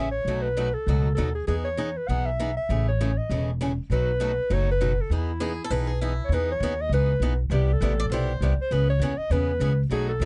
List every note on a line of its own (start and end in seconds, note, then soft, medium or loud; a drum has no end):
0.00 0.22 A1 medium
0.00 0.11 E5 medium
0.11 0.43 C#5 loud
0.25 0.74 B1 medium
0.25 0.47 B2 medium
0.25 0.47 F#3 medium
0.25 0.47 A3 medium
0.25 0.47 D#4 medium
0.25 0.47 F#4 medium
0.42 0.75 B4 medium
0.57 0.67 B2 medium
0.57 0.68 F#3 medium
0.57 0.68 A3 medium
0.57 0.68 D#4 medium
0.57 0.68 F#4 medium
0.74 1.14 A4 medium
0.87 1.12 C#2 medium
0.87 1.07 B2 medium
0.87 1.07 F#3 medium
0.87 1.07 A3 medium
0.87 1.07 D#4 medium
0.87 1.08 F#4 medium
1.15 1.43 D#2 medium
1.15 1.28 B2 medium
1.15 1.28 F#3 medium
1.15 1.28 A3 medium
1.15 1.28 D#4 medium
1.15 1.29 F#4 medium
1.15 1.33 A4 medium
1.35 1.46 G#4 medium
1.47 1.96 E2 medium
1.47 1.67 E3 medium
1.47 1.67 B3 medium
1.47 1.67 D#4 medium
1.47 1.56 G#4 medium
1.47 1.68 G#4 medium
1.65 1.99 C#5 medium
1.77 1.88 E3 medium
1.77 1.89 B3 medium
1.77 1.89 D#4 medium
1.77 1.89 G#4 medium
1.97 2.09 B4 medium
2.08 2.57 B1 medium
2.08 2.28 E3 medium
2.08 2.28 B3 medium
2.08 2.29 D#4 medium
2.08 2.29 G#4 medium
2.08 2.27 F#5 medium
2.26 2.56 E5 medium
2.40 2.50 E3 medium
2.40 2.50 B3 medium
2.40 2.50 D#4 medium
2.40 2.50 G#4 medium
2.57 2.85 E5 medium
2.69 3.17 A1 medium
2.69 2.89 C#3 medium
2.69 2.89 E3 medium
2.69 2.89 A3 medium
2.69 2.89 C#4 medium
2.69 2.89 G#4 medium
2.88 3.19 C#5 medium
3.01 3.10 C#3 medium
3.01 3.11 E3 medium
3.01 3.11 A3 medium
3.01 3.11 C#4 medium
3.01 3.11 G#4 medium
3.17 3.50 D#5 medium
3.29 3.78 E1 medium
3.29 3.49 C#3 medium
3.29 3.50 E3 medium
3.29 3.50 A3 medium
3.29 3.50 C#4 medium
3.29 3.50 G#4 medium
3.61 3.71 C#3 medium
3.61 3.71 E3 medium
3.61 3.71 A3 medium
3.61 3.71 C#4 medium
3.61 3.71 G#4 medium
3.90 4.38 B1 medium
3.90 4.10 B2 medium
3.90 4.10 F#3 medium
3.90 4.10 A3 medium
3.90 4.10 D#4 medium
3.90 4.11 F#4 medium
3.90 4.55 B4 loud
4.20 4.30 B2 medium
4.20 4.31 F#3 medium
4.20 4.31 A3 medium
4.20 4.31 D#4 medium
4.20 4.31 F#4 medium
4.50 4.98 F#1 medium
4.50 4.70 B2 medium
4.50 4.70 F#3 medium
4.50 4.70 A3 medium
4.50 4.70 D#4 medium
4.50 4.70 F#4 medium
4.50 4.70 C#5 loud
4.72 5.02 B4 loud
4.81 4.91 B2 medium
4.81 4.91 F#3 medium
4.81 4.91 A3 medium
4.81 4.91 D#4 medium
4.81 4.91 F#4 medium
5.01 5.11 A4 medium
5.10 5.58 E2 medium
5.10 5.30 E3 medium
5.10 5.31 B3 medium
5.10 5.31 D#4 medium
5.10 5.98 E4 medium
5.10 5.31 G#4 medium
5.40 5.51 E3 medium
5.40 5.51 B3 medium
5.40 5.52 D#4 medium
5.40 5.64 G#4 medium
5.40 5.52 G#4 loud
5.64 5.70 A4 medium
5.70 6.18 B1 medium
5.70 5.90 E3 medium
5.70 5.90 B3 medium
5.70 5.90 D#4 medium
5.70 5.90 G#4 medium
5.70 5.87 B4 medium
5.87 6.00 G#4 medium
6.01 6.12 E3 medium
6.01 6.12 B3 medium
6.01 6.12 D#4 medium
6.01 6.29 E4 medium
6.01 6.12 G#4 medium
6.24 6.35 C#5 medium
6.29 6.59 E2 medium
6.29 6.51 E3 medium
6.33 6.51 B3 medium
6.33 6.51 D#4 medium
6.33 6.52 G#4 medium
6.33 6.50 B4 loud
6.51 6.83 C#5 loud
6.60 6.89 D#2 medium
6.60 6.72 E3 medium
6.60 6.73 B3 loud
6.60 6.73 D#4 medium
6.60 6.73 G#4 medium
6.81 6.92 D#5 loud
6.89 7.19 C#2 medium
6.89 7.11 E3 medium
6.89 7.11 B3 medium
6.93 7.12 D#4 medium
6.93 7.12 G#4 medium
6.93 7.37 B4 loud
7.20 7.49 B1 medium
7.20 7.32 E3 medium
7.20 7.32 B3 medium
7.20 7.32 D#4 medium
7.20 7.32 G#4 medium
7.50 7.79 C2 medium
7.50 7.70 C3 medium
7.50 7.71 G3 medium
7.50 7.71 B3 medium
7.50 7.71 E4 medium
7.50 7.71 G4 medium
7.50 7.75 G4 medium
7.73 8.31 A4 medium
7.81 8.09 A1 loud
7.81 7.92 C3 medium
7.81 7.92 G3 medium
7.81 7.92 B3 medium
7.81 7.92 E4 medium
7.81 7.93 G4 medium
8.00 8.05 D5 loud
8.10 8.39 B1 medium
8.10 8.31 C3 medium
8.10 8.31 G3 medium
8.10 8.32 B3 medium
8.10 8.32 G4 medium
8.10 8.50 C5 loud
8.14 8.32 E4 medium
8.41 8.57 C2 medium
8.41 8.52 C3 medium
8.41 8.52 G3 medium
8.41 8.52 B3 medium
8.41 8.53 E4 medium
8.41 8.53 G4 medium
8.59 8.74 C5 loud
8.59 muted upright bass stroke soft
8.71 8.99 C#2 medium
8.71 8.91 C#3 medium
8.71 8.90 E3 medium
8.71 8.91 B3 medium
8.71 8.91 C#4 medium
8.71 8.91 G#4 medium
8.71 8.89 B4 loud
8.90 9.19 C#5 loud
8.99 9.17 D#2 medium
8.99 9.12 C#3 loud
8.99 9.12 E3 medium
8.99 9.12 B3 medium
8.99 9.12 C#4 loud
8.99 9.12 G#4 medium
9.18 9.33 D#5 loud
9.18 muted upright bass stroke soft
9.30 9.59 E2 medium
9.30 9.50 C#3 medium
9.30 9.51 E3 medium
9.30 9.51 B3 medium
9.30 9.51 C#4 medium
9.30 9.51 G#4 medium
9.30 9.79 B4 loud
9.60 9.89 C#2 medium
9.60 9.71 C#3 medium
9.60 9.72 E3 medium
9.60 9.72 B3 loud
9.60 9.72 C#4 medium
9.60 9.72 G#4 medium
9.89 10.19 B1 medium
9.89 10.10 B2 medium
9.89 10.11 F#3 medium
9.89 10.11 A3 medium
9.89 10.11 D#4 medium
9.89 10.11 F#4 medium
9.89 10.08 G#4 medium
10.09 10.25 A4 medium
10.20 10.25 D#2 medium
10.20 10.25 B2 medium
10.20 10.25 F#3 medium
10.20 10.25 A3 medium